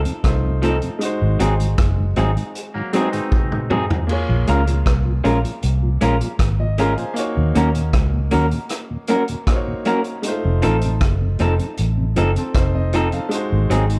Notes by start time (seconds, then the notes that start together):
Already playing: A3 D#4 F4 C5
0.05 F2 C3, closed hi-hat
0.23 C2 A3 D#4 F4 C5, kick, cross-stick, closed hi-hat
0.44 F2 C3
0.62 F3 A3 C4 D#4 A4, closed hi-hat
0.82 F2 C3, closed hi-hat
0.99 G#3 D#4 F#4, closed hi-hat
1.05 C5
1.21 G#1 G#2 D#3
1.40 G#1 F#3 G#3 C4 D#4 G#4, closed hi-hat
1.60 G#2 D#3, closed hi-hat
1.78 F#1, kick, cross-stick, closed hi-hat
1.98 G#2 D#3
2.16 G#1 F#3 G#3 C4 D#4 G#4, closed hi-hat
2.36 G#2 D#3, closed hi-hat
2.55 closed hi-hat
2.74 G#2 D#3 F#3 A#3
2.93 F#3 G#3 C4 D#4 F#4 G#4 B4, closed hi-hat
3.02 C5
3.12 G#2 D#3 C4 D#4, closed hi-hat
3.32 kick, high tom
3.52 G#2 D#3, mid tom
3.70 F#3 G#3 C4 D#4 G#4, mid tom
3.90 floor tom
4.07 A#3 F4, crash
4.11 G#4 C#5
4.29 A#1 A#2 F3
4.47 C#2 G#3 A#3 C#4 F4 A#4, closed hi-hat
4.67 A#2 F3, closed hi-hat
4.86 C2, kick, cross-stick, closed hi-hat
5.05 A#2 F3
5.24 A#1 G#3 A#3 C#4 F4 A#4, closed hi-hat
5.44 A#2 F3, closed hi-hat
5.63 C2, closed hi-hat
5.83 A#2 F3
6.01 A#1 G#3 A#3 C#4 F4 A#4, closed hi-hat
6.21 A#2 F3, closed hi-hat
6.39 G#1, kick, cross-stick, closed hi-hat
6.60 A#2 F3 D#5
6.78 G#3 A#3 C#4 F4 G#4 A#4 F5, closed hi-hat
6.97 A#2 F3 C5 G#5, closed hi-hat
7.14 A#3 D#4 F#4, closed hi-hat
7.20 C#5
7.36 D#2 A#2
7.55 D#2 F#3 A#3 C#4 D#4 F#4 A#4, closed hi-hat
7.74 D#2 A#2, closed hi-hat
7.93 C#2, kick, cross-stick, closed hi-hat
8.14 D#2 A#2
8.31 D#2 F#3 A#3 C#4 D#4 F#4 A#4, closed hi-hat
8.51 D#2 A#2, closed hi-hat
8.69 cross-stick, closed hi-hat
8.90 D#2 A#2
9.07 F#3 A#3 C#4 D#4 F#4 A#4, closed hi-hat
9.28 D#2 A#2, closed hi-hat
9.47 A#3 D#4 F#4 C5, kick, cross-stick, closed hi-hat
9.56 C#5
9.67 D#2 A#2
9.85 F#3 A#3 C#4 D#4 F#4 A#4, closed hi-hat
10.04 closed hi-hat
10.22 G#3 D#4 F4, closed hi-hat
10.28 A3 C5
10.44 F1 F2 C3
10.62 A1 F3 A3 C4 D#4 A4, closed hi-hat
10.81 F2 C3, closed hi-hat
11.01 F#1, kick, cross-stick, closed hi-hat
11.21 F2 C3
11.39 F1 F3 A3 C4 D#4 A4, closed hi-hat
11.59 F2 C3, closed hi-hat
11.77 A1, closed hi-hat
11.97 F2 C3
12.16 F#1 F3 A3 C4 D#4 A4, closed hi-hat
12.35 F2 C3 C4 A4, closed hi-hat
12.54 F1 D#4 C5, kick, cross-stick, closed hi-hat
12.75 F2 C3 D#5
12.93 F3 A3 C4 D#4 A4, closed hi-hat
13.12 F2 C3 A4 F5, closed hi-hat
13.29 G#3 D#4, closed hi-hat
13.33 F#4 C5
13.51 G#1 G#2 D#3
13.69 G#1 F#3 G#3 C4 D#4 G#4, closed hi-hat
13.89 G#2 D#3, closed hi-hat